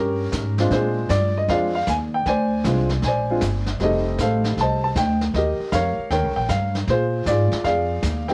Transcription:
Already playing: G2 C#4 G4 A#4
0.32 G#2, kick, snare, hi-hat pedal
0.58 G#3 C4 D4 F4, snare
0.70 A#2 F4 G#4 C5, brush sweep, kick, snare
1.09 G2 D5, kick, snare, hi-hat pedal
1.38 D#5
1.48 F2 G#3 C4 D4 F4 G#4 D5 F5, brush sweep, kick, snare
1.75 F5
1.87 D#2 G#5, kick, snare, hi-hat pedal
2.14 G5
2.26 D2 C5 D5 G#5, brush sweep, kick, snare
2.64 C2 G#3 C4 D4 F4, kick, snare, hi-hat pedal
2.89 snare
3.02 A#1 G#5, brush sweep, kick, snare
3.07 C5 D5
3.30 G#3 C4 D4 F4
3.41 G1, kick, snare, hi-hat pedal
3.66 snare
3.80 F1 G3 A3 C4 D#4 D#5, brush sweep, kick, snare
3.84 G4 A4
4.18 A1 A4 C5 F5, kick, snare, hi-hat pedal
4.44 snare
4.57 C2 A5, brush sweep, kick, snare
4.62 C5 D#5
4.84 A5
4.96 D2 G5, kick, snare, hi-hat pedal
5.21 snare
5.34 D#2 A#4 D#5, brush sweep, kick, snare
5.38 G4
5.59 muted upright bass stroke
5.72 F2 A#4 C#5 F5, kick, snare, hi-hat pedal
5.98 muted upright bass stroke
6.10 D#2 A#4 C#5 G5, brush sweep, kick, snare
6.24 C#2
6.36 A#1 G5
6.49 G2 F5, kick, snare, hi-hat pedal
6.75 snare
6.87 A#2 F4 C5, brush sweep, kick, snare
6.92 G#4
7.26 G#2 F4 D5, kick, snare, hi-hat pedal
7.30 G#4
7.51 muted upright bass stroke, snare
7.64 F2 G#4 D5 F5, brush sweep, kick, snare
8.02 D#2, kick, snare, hi-hat pedal
8.28 A3 C4 D#4 G4 G5, snare

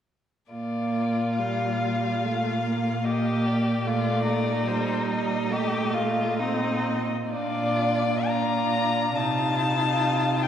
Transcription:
0.52 A#2 A#3 F4 D5
1.39 G3 F5
2.24 A3
2.64 A#3
3.04 A#3 G4 D#5
3.46 D5
3.85 A#2 A3 F4 D5
4.27 D#4
4.68 G3 C5
5.10 D#5
5.50 A3 G4
5.94 F4
6.39 C4 D#4 D#5
7.31 A#2 D4 F4 D5
8.28 D4 F4 A#5
9.15 C3 D#4 F4 A5
10.43 G5

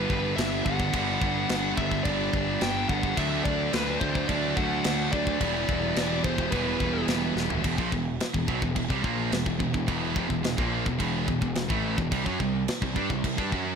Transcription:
Already playing: G2 D3 G3 B3 D4 B4
0.00 D4
0.07 G1 B3 D4, kick
0.14 B3 D4
0.23 B3 D4
0.30 B3 D4
0.36 G1 G2 D3 G3 B3 D4 E5, snare, crash
0.45 B3 D4
0.53 B3 D4
0.61 B3 D4 F#5
0.66 G1 G2 D3 G3 B3, kick
0.70 D4
0.76 B3 D4, kick
0.84 B3 D4
0.93 G1 G2 D3 G3 B3 D4, kick, crash
1.01 B3 D4
1.08 B3 D4
1.16 B3 D4
1.21 G1 B3 D4, kick
1.31 B3 D4
1.39 B3 D4
1.47 G1 G2 B3 D4, snare, crash
1.51 D3 G3 B3
1.55 D4
1.62 B3 D4
1.71 B3 D4
1.77 G1 G2 D3 G3 B3 D4 E5, kick
1.86 B3 D4
1.91 B3 D4, kick
2.00 B3 D4 D5
2.05 G1 G2 D3 G3 B3, kick, crash
2.10 D4
2.16 B3 D4
2.24 B3 D4
2.31 G1 B3 D4, kick
2.39 B3 D4
2.47 B3 D4
2.55 B3 D4
2.61 G1 G2 D3 G3 B3 D4 G5, snare, crash
2.70 B3 D4
2.78 B3 D4
2.85 G2 B3 D4 F#5
2.89 G1 D3 G3 B3, kick
2.94 D4
3.01 B3 D4, kick
3.08 B3 D4
3.17 D2 D3 F#3 A3 D4 E5, kick, crash
3.25 A3 D4
3.32 A3 D4
3.40 A3 D4 D5
3.45 D2 A3 D4, kick
3.56 A3 D4
3.64 A3 D4
3.72 D2 D3 F#3 A3 D4 B4, snare, crash
3.80 A3 D4
3.87 A3 D4
3.94 A3 D4
4.01 D2 D3 F#3 A3 D4 C5, kick
4.10 A3 D4
4.15 A3 D4, kick
4.26 D2 D3 A3 D4 D5, kick, crash
4.30 F#3 A3
4.34 D4
4.42 A3 D4
4.49 A3 D4
4.56 D2 A3 D4 F#5, kick
4.64 A3 D4
4.71 A3 D4
4.79 A3 D4
4.84 D2 D3 F#3 A3 D4, snare, crash
4.95 A3 D4
5.02 A3 D4
5.11 D2 D3 F#3 A3 D4 D5, kick
5.18 A3 D4
5.26 A3 D4, kick
5.33 A3 D4
5.39 E1 E2 B2 E3 G3 B3 E4, kick, crash
5.47 B3 E4
5.56 B3 E4
5.63 B3 E4
5.69 E1 B3 E4, kick
5.78 B3 E4
5.87 B3 E4
5.94 E1 E3 G3 B3 E4, snare, crash
6.02 B3 E4
6.09 B3 E4
6.18 B3 E4
6.24 E3 G3 B3 E4 C5, kick
6.33 B3 E4
6.38 B3 E4, kick
6.48 E2 E3 B3 E4 B4, crash
6.52 E1 B2 G3, kick
6.57 B3 E4
6.63 B3 E4
6.70 B3 E4
6.79 E1 B3 E4, kick
6.87 B3 E4
6.95 B3 E4
7.02 B3 E4
7.08 E1 E3 G3 B3 E4, snare, crash
7.17 B3 E4
7.26 B3 E4
7.32 B3 E4
7.36 E1 E3 G3, snare
7.40 B3 E4
7.48 B3 E4, floor tom
7.56 B3 E4
7.64 E1 E2 B2, kick, crash
7.76 A#1 A#2 F3, kick
7.92 E1 E2 B2, kick
8.20 snare, crash
8.34 E1 E2 B2, kick
8.46 B1 B2 F#3, kick
8.60 E1 E2 B2, kick
8.75 E1 E2 B2, kick, crash
8.88 C2 C3 G3, kick
9.03 A#1 A#2 F3 A#3, kick
9.31 E1 E2 B2, snare, crash
9.46 E1 E2 B2, kick
9.60 E1 E2 B2, kick
9.74 E1 E2 B2, kick
9.88 E1 E2 B2 E3, kick, crash
10.16 F1 F2 C3, kick
10.30 E1 E2 B2, kick
10.44 E1 E2 B2, snare, crash
10.58 A#1 A#2 F3 A#3, kick
10.85 E1 E2 B2, kick
10.99 E1 E2 B2 E3, kick, crash
11.27 E1 E2 B2, kick
11.41 E1 E2 B2, kick
11.55 snare, crash
11.68 A1 A2 E3 A3, kick
11.98 E1 E2 B2, kick
12.11 C2 C3 G3, kick, crash
12.25 F#2 F#3 C#4, kick
12.40 C2 C3 G3, kick
12.68 snare, crash
12.82 C2 C3 G3, kick
12.96 G2 G3 D4, kick
13.10 C2 C3 G3, kick
13.24 C2 C3 G3, kick, crash
13.37 G2 G3 D4, kick
13.51 F#2 F#3 C#4 F#4, kick

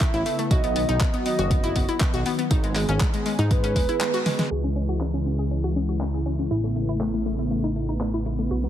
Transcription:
Already playing: C#3 A3 B3 E4 E5
0.01 A3, kick, clap, closed hi-hat
0.14 A1 E4, closed hi-hat
0.26 A3, open hi-hat
0.39 A3, closed hi-hat
0.51 B1 D#3 F#3 F#4 D#5, kick, closed hi-hat
0.64 B3, closed hi-hat
0.76 B3, open hi-hat
0.89 B1 D#4, closed hi-hat
1.01 B3, kick, clap, closed hi-hat
1.14 B3, closed hi-hat
1.26 B3 D#5, open hi-hat
1.39 F#1 F#4, closed hi-hat
1.51 B3, kick, closed hi-hat
1.64 E4, closed hi-hat
1.76 F#1 B3, kick, open hi-hat
1.89 E4, closed hi-hat
2.01 B3, kick, clap, closed hi-hat
2.14 B1 F#4, closed hi-hat
2.26 B3, open hi-hat
2.39 B3, closed hi-hat
2.51 G#1 G#3 D#4 G#4, kick, closed hi-hat
2.64 G#3, closed hi-hat
2.76 G#3, clap, open hi-hat
2.89 G#1 C#4, closed hi-hat
3.01 G#3, kick, clap, closed hi-hat
3.14 G#3, closed hi-hat
3.26 G#3, open hi-hat
3.39 G#2 D#4, closed hi-hat
3.51 G#3 B4, kick, closed hi-hat
3.64 C#4, closed hi-hat
3.76 D#1 G#3, kick, open hi-hat
3.89 E4, closed hi-hat
4.01 G#3, clap, closed hi-hat
4.14 F#4, closed hi-hat
4.26 G#3, snare, open hi-hat
4.39 G#3, snare, closed hi-hat
4.51 C#2 C#3 E3 G#3 E4 G#4
4.64 C#4
4.76 C#4, closed hi-hat
4.89 F#4, closed hi-hat
5.01 C#4, clap, closed hi-hat
5.14 C#4, closed hi-hat
5.26 C#4, closed hi-hat
5.39 G#4, closed hi-hat
5.51 C#4, closed hi-hat
5.64 F#4, closed hi-hat
5.76 C#4, closed hi-hat
5.89 F#4, closed hi-hat
6.01 C#4, clap, closed hi-hat
6.14 G#4, closed hi-hat
6.26 C#4, closed hi-hat
6.39 C#4, closed hi-hat
6.51 A1 C#3 A3 B3 E4, closed hi-hat
6.64 A3, closed hi-hat
6.76 A3, closed hi-hat
6.89 E4, closed hi-hat
7.01 A3, clap, closed hi-hat
7.14 A3, closed hi-hat
7.26 A3, closed hi-hat
7.39 E4, closed hi-hat
7.51 A3, closed hi-hat
7.64 D#4, closed hi-hat
7.76 A3, closed hi-hat
7.89 D#4, closed hi-hat
8.01 A3, clap, closed hi-hat
8.14 E4, closed hi-hat
8.26 A3, closed hi-hat
8.39 A3, closed hi-hat
8.51 B1 D#3 F#3 F#4, closed hi-hat
8.64 B3, closed hi-hat

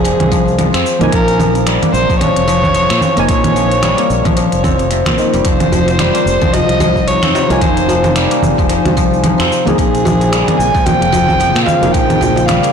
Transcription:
Already playing: F1 F3 G3 A#3 C4 D#4 G#4 G#5
0.04 F3, closed hi-hat, shaker
0.20 C2, closed hi-hat, low conga
0.32 F3, kick, shaker
0.48 shaker
0.58 F3, closed hi-hat, low conga, shaker
0.74 F2 C4, finger snap, closed hi-hat, shaker
0.86 shaker
0.99 C2 F3 A#3 D#4, closed hi-hat, low conga, shaker
1.03 G#5
1.12 A#1 F3 A#4, kick, closed hi-hat, shaker
1.28 closed hi-hat, shaker
1.39 F3, low conga, shaker
1.55 closed hi-hat, shaker
1.66 G3, finger snap, closed hi-hat, shaker
1.82 A#3, closed hi-hat, low conga, shaker
1.93 A#1 C5, shaker
2.10 A#1 F3, kick, shaker
2.20 F3 C#5, closed hi-hat, low conga, shaker
2.36 F1, closed hi-hat
2.48 F3, shaker
2.64 kick, low conga, shaker
2.75 F3, closed hi-hat, shaker
2.90 A#2 C4, finger snap, closed hi-hat
3.01 low conga, shaker
3.15 F1 F3 A#3 D#4, closed hi-hat, shaker
3.19 G#5
3.28 A#1 F3 C#5, kick, closed hi-hat, shaker
3.44 closed hi-hat, low conga, shaker
3.56 F3, shaker
3.71 closed hi-hat, shaker
3.83 G3, finger snap, closed hi-hat, low conga, shaker
3.98 A#3, closed hi-hat, shaker
4.10 A#1, shaker
4.25 A#1 F3, kick, closed hi-hat, low conga, shaker
4.37 F3, closed hi-hat, shaker
4.52 F1, closed hi-hat, shaker
4.64 C4, kick, low conga, shaker
4.79 closed hi-hat, shaker
4.91 C3, closed hi-hat, shaker
5.06 A#2 C4, finger snap, kick, closed hi-hat, low conga
5.16 F3 A#3 D#4, shaker
5.34 F1 G3, closed hi-hat, shaker
5.45 F1 C3 F3 D#4 F4 C5, kick, closed hi-hat, shaker
5.60 closed hi-hat, low conga, shaker
5.72 F3, djembe tone, djembe bass, shaker
5.88 closed hi-hat, djembe slap, shaker
5.99 G3, finger snap, closed hi-hat, low conga, shaker
6.15 A#3, closed hi-hat, shaker
6.26 F1, shaker
6.41 F1 F3, kick, low conga, shaker
6.53 F3 D#5, closed hi-hat, djembe bass, shaker
6.69 C2, closed hi-hat
6.80 F3, djembe bass, low conga, shaker
6.96 kick, djembe slap, djembe tone, shaker
7.08 F3 C#5, closed hi-hat, shaker
7.23 F2 C4, finger snap, closed hi-hat, low conga
7.35 djembe slap, shaker
7.48 C2 F3 A#3 D#4, closed hi-hat, djembe tone, shaker
7.52 G#5
7.61 F1 F3 C5 G#5, kick, closed hi-hat, low conga, shaker
7.77 closed hi-hat, shaker
7.88 F3, djembe tone, djembe bass, shaker
8.04 closed hi-hat, djembe slap, low conga, shaker
8.16 G3, finger snap, closed hi-hat, shaker
8.31 A#3, closed hi-hat, shaker
8.42 F1, low conga, shaker
8.58 F1 F3, kick, shaker
8.69 F3, closed hi-hat, shaker
8.85 C2, closed hi-hat, low conga, djembe bass
8.97 F3, kick, shaker
9.13 shaker
9.24 F3, closed hi-hat, low conga, shaker
9.40 F2 C4, finger snap, closed hi-hat, djembe tone, shaker
9.52 shaker
9.65 C2 F3 A#3 D#4, closed hi-hat, djembe slap, djembe tone, low conga, shaker
9.69 G#4
9.78 A#1 C#3 F3 A#3 F4 G#4, kick, closed hi-hat, shaker
9.95 closed hi-hat, shaker
10.05 F3, djembe tone, djembe bass, low conga, shaker
10.21 closed hi-hat, djembe slap, shaker
10.32 G3, finger snap, closed hi-hat, shaker
10.48 A#3, closed hi-hat, low conga, shaker
10.58 A#1 G#5, shaker
10.74 A#1 F3, kick, shaker
10.86 F3 G5, closed hi-hat, djembe bass, low conga, shaker
11.01 F1, closed hi-hat
11.12 F3, djembe bass, shaker
11.28 kick, djembe slap, djembe tone, low conga, shaker
11.40 F3, closed hi-hat, shaker
11.55 A#2 C4, finger snap, closed hi-hat
11.66 F5, djembe slap, low conga, shaker
11.81 F1 F3 A#3 D#4, closed hi-hat, djembe tone, shaker
11.85 G#4
11.93 A#1 C3 F3 G5, kick, closed hi-hat, shaker
12.10 closed hi-hat, low conga, shaker
12.21 F3, djembe tone, djembe bass, shaker
12.36 closed hi-hat, djembe slap, shaker
12.47 G3 F5, finger snap, closed hi-hat, low conga, shaker
12.63 A#3, closed hi-hat, shaker

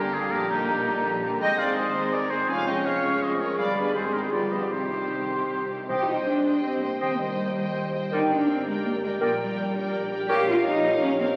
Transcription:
Already playing: G1 G2 D3 G3 A#3 D4 G4 A#4 D5 G5 A#5
0.13 D3 A#3 D4 F4 G4 G#4 D5
0.31 A#1 A#2 D3 G3 A#3 D4 G4 A#4
0.48 D3 A#3 D4 D#4 G4
0.68 A#1 A#2 A#4
0.86 D3 A#3 D4 G4 D5
1.04 A#1 A#2 G5
1.21 D3 A#3 D4 G4 D5
1.40 G#1 G#2 G#3 C4 G#4 D#5 G5 C6
1.58 G#3 C4 D#4 G#4 D5 F5
1.76 G#1 G#2 C5 D#5
1.94 G#3 C4 D#4 G#4 D#5
2.12 G#1 G#2 A#4 D5 G#5
2.30 G#3 C4 D#4 G#4 C5 D#5
2.48 F1 F2 G#3 C#4 G#4 F5 G#5 C#6
2.66 G#3 C#4 G#4 D#5 G5
2.85 F1 F2 C#5 F5
3.03 G#3 C#4 G#4
3.21 F1 F2 C5 D#5 G#5
3.40 G#3 C#4 G#4 A#4 C#5
3.58 G1 G2 G#3 B3 G#4 D5 F5 B5
3.76 G3 B3 D4 G#4 B4 D5
3.94 G#1 G#2 D#3 C4 D#4 G#4 C5 C6
4.13 D#3 C4 D#4 G4 G#4 A#4 C5
4.23 G#4 C5
4.32 G1 G2 F3 G3 B3 F4 G4 B4 D5 B5
4.51 F3 G3 B3 F4 G4 C5 D#5
4.62 B4 D5
4.70 C2 C3 D#3 G3 C4 D#4 G4 C5 C6
4.90 D#3 G3 C4 G4
5.10 C2 C3 G4
5.30 D#3 G3 C4 G4 C5
5.50 C2 C3 D#5
5.69 D#3 G3 C4 G4 C5
5.89 C2 C3 G4 C5 D#5 G5
6.08 C4 D#4 C5 D#5 G5
6.27 C2 D4 G4
6.45 C5 D#5 G5
6.63 C2 C4 G4 C5 D#5
6.82 A#3 C5 D#5 G5
7.00 D#2 D#3 C4 G4 C5 D#5 G5
7.19 G3 D#4 C5 D#5 G5
7.38 D#2 C5
7.57 C5 D#5 G5
7.75 D#2 G5
7.93 C5 D#5 G5
8.12 G1 G2 D#4 G4 A#4 D5 G5
8.30 A#3 D4 A#4 D5 G5
8.48 G1 C4 G4
8.66 G#3 A#4 D5 G5
8.85 G1 A#3 G4 A#4 D5
9.03 G#3 A#4 D5 G5
9.21 A#1 A#2 A#3 G4 A#4 D5 G5
9.38 G3 A#4 D5 G5
9.57 A#1 G4
9.75 D4 A#4 D5 G5
9.93 A#1 D5
10.11 G4 A#4 D5 G5
10.29 A#1 A#2 G4 A#4 C#5 F5
10.47 G3 F4 A#4 C#5 F5
10.65 A#1 D#4 F4
10.84 G4 A#4 C#5 F5
11.02 A#1 C#4 C#5
11.20 C4 G4 A#4 C#5 F5

